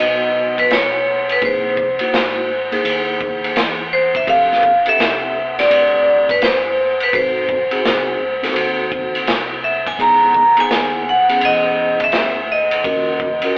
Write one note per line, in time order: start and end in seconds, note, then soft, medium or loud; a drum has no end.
0.00 0.67 B1 medium
0.00 0.96 B3 medium
0.00 0.96 D#4 medium
0.00 0.96 F#4 medium
0.00 0.97 B4 medium
0.00 0.61 D#5 medium
0.58 0.72 B4 medium
0.58 kick medium
0.58 ride medium
0.71 1.38 B1 medium
0.71 1.32 C#5 medium
0.71 snare loud
0.71 hi-hat pedal soft
0.71 ride medium
1.29 1.44 B4 medium
1.29 ride medium
1.42 1.98 C2 loud
1.42 1.85 A#3 medium
1.42 1.85 D#4 medium
1.42 1.85 E4 medium
1.42 1.86 G#4 medium
1.42 3.54 C5 medium
1.42 kick loud
1.42 ride medium
1.77 kick medium
1.99 2.51 A#3 medium
1.99 2.51 D#4 medium
1.99 2.51 E4 medium
1.99 2.51 F#4 medium
1.99 muted fretless electric bass stroke soft
1.99 ride medium
2.14 2.82 G#1 medium
2.14 snare loud
2.14 hi-hat pedal soft
2.14 ride medium
2.72 3.81 A#3 medium
2.72 3.82 D#4 medium
2.72 3.82 E4 medium
2.72 3.82 G#4 medium
2.72 ride medium
2.85 3.53 D#2 medium
2.85 ride medium
3.21 kick medium
3.44 ride medium
3.56 4.24 E2 medium
3.56 snare loud
3.56 hi-hat pedal soft
3.56 ride medium
3.93 4.16 C5 medium
4.15 4.29 E5 medium
4.15 kick medium
4.15 ride medium
4.27 4.84 F1 loud
4.27 4.70 C4 medium
4.27 4.71 D4 medium
4.27 4.71 G4 medium
4.27 4.71 A4 medium
4.27 4.83 F5 loud
4.27 kick loud
4.27 ride medium
4.52 snare soft
4.63 kick medium
4.86 5.37 C4 medium
4.86 5.37 D4 medium
4.86 5.38 G4 medium
4.86 5.38 A4 medium
4.86 5.55 E5 loud
4.86 muted fretless electric bass stroke soft
4.86 ride medium
4.99 5.67 C2 medium
4.99 snare loud
4.99 hi-hat pedal soft
4.99 ride medium
5.58 6.68 C4 medium
5.58 6.68 D4 medium
5.58 6.68 G4 medium
5.58 6.68 B4 medium
5.58 6.32 D5 medium
5.58 snare soft
5.58 ride medium
5.70 6.38 D2 medium
5.70 ride medium
6.29 6.42 B4 medium
6.29 kick medium
6.29 ride medium
6.42 7.10 G1 medium
6.42 6.98 C5 medium
6.42 snare loud
6.42 hi-hat pedal soft
6.42 ride medium
7.00 7.14 B4 medium
7.00 ride medium
7.12 7.69 G#1 loud
7.12 7.56 C4 medium
7.12 7.56 D#4 medium
7.12 7.57 F#4 medium
7.12 7.57 A4 medium
7.12 9.25 C5 medium
7.12 kick loud
7.12 ride medium
7.49 kick medium
7.71 8.22 C4 medium
7.71 8.22 D#4 medium
7.71 8.22 F#4 medium
7.71 8.23 G#4 medium
7.71 muted fretless electric bass stroke soft
7.71 ride medium
7.85 8.19 C2 medium
7.85 snare loud
7.85 hi-hat pedal soft
7.85 ride medium
8.20 8.54 C#2 medium
8.42 9.53 C4 medium
8.42 9.53 D#4 medium
8.42 9.53 F#4 medium
8.42 9.53 A4 medium
8.42 snare soft
8.42 ride medium
8.56 9.24 D#2 medium
8.56 ride medium
8.92 kick medium
9.15 ride medium
9.27 9.96 C2 medium
9.27 snare loud
9.27 hi-hat pedal soft
9.27 ride medium
9.64 9.88 E5 medium
9.87 9.99 G#5 medium
9.87 kick medium
9.87 ride medium
9.99 10.55 C#2 loud
9.99 10.42 B3 medium
9.99 10.42 D#4 medium
9.99 10.42 E4 medium
9.99 10.43 G#4 medium
9.99 10.61 A#5 loud
9.99 kick loud
9.99 ride medium
10.34 kick medium
10.57 11.08 B3 medium
10.57 11.08 D#4 medium
10.57 11.09 E4 medium
10.57 11.09 G#4 medium
10.57 11.09 G#5 loud
10.57 muted fretless electric bass stroke soft
10.57 ride medium
10.70 11.38 D#2 medium
10.70 snare loud
10.70 hi-hat pedal soft
10.70 ride medium
11.09 11.45 F#5 medium
11.29 12.39 B3 medium
11.29 12.39 C#4 medium
11.29 12.39 E4 medium
11.29 12.39 G#4 medium
11.29 ride medium
11.41 12.10 E2 medium
11.41 12.04 D#5 medium
11.41 ride medium
12.00 kick medium
12.00 ride medium
12.04 12.52 E5 medium
12.12 12.81 D2 medium
12.12 snare loud
12.12 hi-hat pedal soft
12.12 ride medium
12.52 13.58 D#5 medium
12.71 ride medium
12.84 13.41 D#2 loud
12.84 13.28 C#4 medium
12.84 13.28 F4 medium
12.84 13.28 F#4 medium
12.84 13.28 A#4 medium
12.84 kick loud
12.84 ride medium
13.20 kick medium
13.42 13.58 C#4 medium
13.42 13.58 F4 medium
13.42 13.58 F#4 medium
13.42 13.58 A#4 medium
13.42 muted fretless electric bass stroke soft
13.42 ride medium